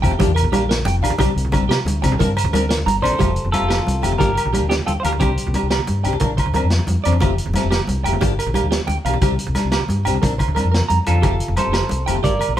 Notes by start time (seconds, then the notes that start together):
0.02 F2 F3 A3 C4 G4 G5, kick, closed hi-hat, low agogo
0.09 F1, low conga
0.19 G1 F3 A#3 D4 G4, kick, closed hi-hat, high conga
0.26 E2, low conga
0.35 A#4, closed hi-hat, low agogo
0.42 A#1, low conga
0.52 F3 A#3 D4 G4, closed hi-hat, high conga, low agogo
0.69 A#4, snare, closed hi-hat
0.78 low conga
0.85 F1 G5, closed hi-hat, high conga
1.01 A#1 F3 A#3 D4 G4 F5, closed hi-hat, low conga, low agogo
1.10 low conga
1.19 C2 G3 C4 D4 G4, kick, closed hi-hat, high conga, low conga, low agogo
1.36 C2, closed hi-hat
1.45 low conga
1.52 G3 C4 D4 G4, kick, closed hi-hat, high conga, low conga, low agogo
1.61 A1
1.68 C3 G4, snare, closed hi-hat, low agogo
1.85 D2, closed hi-hat, high conga
2.02 C3 G3 C4 D4 G4, muted clean electric guitar stroke, kick, snare, closed hi-hat, low conga, low agogo
2.11 C2, low conga
2.19 A#1 F3 C4 D4 A#4, kick, closed hi-hat, high conga, low conga
2.27 G2
2.37 C5, closed hi-hat, low agogo
2.44 D2, low conga
2.53 F3 C4 D4 A#4, closed hi-hat, high conga, low agogo
2.69 A#4, snare, closed hi-hat
2.78 low conga
2.86 G1 A#5, closed hi-hat, high conga
3.01 A#1 F3 C4 D4 A4 A#4 C5 D5, closed hi-hat, low conga, low agogo
3.12 low conga
3.18 F1 F3 A3 C4 G4, kick, closed hi-hat, high conga, low conga, low agogo
3.28 low conga
3.36 closed hi-hat
3.44 F1, low conga
3.52 F3 A3 C4 F4 G4 A4, closed hi-hat, high conga, low conga, low agogo
3.61 F1
3.69 G4, snare, closed hi-hat, low agogo
3.79 low conga
3.87 C2, closed hi-hat, high conga
4.02 F1 F3 A3 C4 G4 G5, closed hi-hat, low agogo
4.12 low conga
4.18 G1 F3 A#3 D4 G4 A#4, kick, closed hi-hat, high conga, low conga
4.35 A#4, closed hi-hat, low agogo
4.45 A#1, low conga
4.53 F3 A#3 D4 G4, closed hi-hat, high conga, low agogo
4.61 D2
4.69 D4 G4, snare, closed hi-hat
4.79 low conga
4.86 D2 F4 A4 G5, closed hi-hat, high conga
5.00 F3 C5 F5
5.04 D2 A#3 D4 G4 A#4, closed hi-hat, low agogo
5.12 low conga
5.19 C2 C4 D4 G4 C5, kick, closed hi-hat, high conga, low conga, low agogo
5.37 closed hi-hat
5.47 C2, low conga
5.54 C4 D4 G4, closed hi-hat, high conga, low conga, low agogo
5.63 C2
5.70 G4, snare, closed hi-hat, low agogo
5.79 low conga
5.87 G2, closed hi-hat, high conga
6.04 C2 C4 D4 G4 G5, closed hi-hat, low agogo
6.13 low conga
6.20 A#1 F3 D4 A#4, muted steel-string acoustic guitar stroke, kick, closed hi-hat, high conga, low conga
6.37 C5, kick, closed hi-hat, low agogo
6.46 D2, low conga
6.53 F3 C4 D4 A#4, closed hi-hat, high conga, low agogo
6.63 F2
6.70 snare, closed hi-hat
6.79 low conga
6.87 F2, closed hi-hat, high conga
7.04 F2 F3 C4 D4 D5, closed hi-hat, low agogo
7.12 low conga
7.20 F1 F3 A3 C4 F4 G4, kick, closed hi-hat, high conga, low conga, low agogo
7.30 low conga
7.38 closed hi-hat
7.46 F1, low conga
7.54 F3 A3 C4 G4, snare, closed hi-hat, high conga, low conga, low agogo
7.64 F1
7.71 G4, snare, closed hi-hat, low agogo
7.79 low conga
7.87 C2, closed hi-hat, high conga
8.04 F1 F3 A3 G4 G5, muted steel-string acoustic guitar stroke, closed hi-hat, low agogo
8.13 low conga
8.20 G1 F3 A#3 D4 G4, kick, closed hi-hat, high conga, low conga
8.39 A#4, closed hi-hat, low agogo
8.46 A#1, low conga
8.54 F3 A#3 D4 G4, closed hi-hat, high conga, low agogo
8.63 D2
8.71 G4, snare, closed hi-hat
8.79 low conga
8.87 D2 G5, closed hi-hat, high conga
9.05 B1 F3 A#3 D4 G4 F5, closed hi-hat, low agogo
9.14 low conga
9.21 C2 G3 C4 D4 G4, kick, closed hi-hat, high conga, low agogo
9.39 closed hi-hat
9.47 C2, low conga
9.55 G3 D4, muted steel-string acoustic guitar stroke, snare, closed hi-hat, high conga, low agogo
9.64 C2, low conga
9.72 G4, snare, closed hi-hat, low agogo
9.80 low conga
9.89 G2, closed hi-hat, high conga
10.05 C2 G3 C4 D4 G4 G5, closed hi-hat, low agogo
10.14 low conga
10.22 A#1 F3 C4 D4 A#4, kick, closed hi-hat, high conga
10.38 C5, kick, closed hi-hat, low agogo
10.48 D2, low conga
10.55 F3 C4 D4 A#4, closed hi-hat, high conga, low agogo
10.65 F2
10.72 A#4, snare, closed hi-hat, low conga
10.81 low conga
10.89 F2 A#5, closed hi-hat, high conga
11.06 F2 F3 C4 D4 F4 A4, closed hi-hat, low agogo
11.15 low conga
11.22 F1 F3 A3 C4 G4, kick, closed hi-hat, high conga, low conga, low agogo
11.33 low conga
11.40 closed hi-hat
11.48 F1, low conga
11.56 F3 A3 C4 G4 A4 C5, closed hi-hat, high conga, low conga, low agogo
11.67 F1
11.73 G4, snare, closed hi-hat, low agogo
11.82 low conga
11.89 C2, closed hi-hat, high conga
12.06 F1 F3 A3 C4 G4 G5, closed hi-hat, low agogo
12.15 low conga
12.23 G1 F3 A#3 G4 A#4 D5, muted steel-string acoustic guitar stroke, kick, closed hi-hat, high conga, low conga
12.39 A#4, closed hi-hat, low agogo
12.48 A#1, low conga